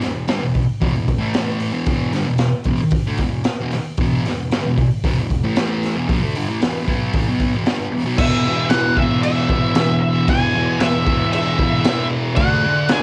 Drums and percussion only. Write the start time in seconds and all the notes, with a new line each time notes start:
0.01 snare, open hi-hat
0.28 snare, open hi-hat
0.54 kick, open hi-hat
0.81 kick, open hi-hat
1.08 kick, open hi-hat
1.34 snare, open hi-hat
1.60 open hi-hat
1.86 kick, open hi-hat
2.13 snare, open hi-hat
2.38 snare, open hi-hat
2.64 kick, open hi-hat
2.91 kick, open hi-hat
3.17 kick, open hi-hat
3.44 snare, open hi-hat
3.71 snare, open hi-hat
3.97 kick, open hi-hat
4.25 snare, open hi-hat
4.51 snare, open hi-hat
4.78 kick, open hi-hat
5.04 kick, open hi-hat
5.30 kick, open hi-hat
5.56 snare, open hi-hat
5.83 snare, open hi-hat
6.09 kick, open hi-hat
6.35 open hi-hat
6.62 snare, open hi-hat
6.88 kick, open hi-hat
7.13 kick, open hi-hat
7.40 kick, open hi-hat
7.66 snare, open hi-hat
7.92 open hi-hat
8.18 kick, crash
8.70 snare, crash
8.97 kick
9.23 crash
9.49 kick
9.75 snare, crash
10.28 kick, crash
10.80 snare, crash
11.07 kick
11.33 crash
11.59 kick
11.84 snare, crash
12.36 kick, crash
12.89 snare, crash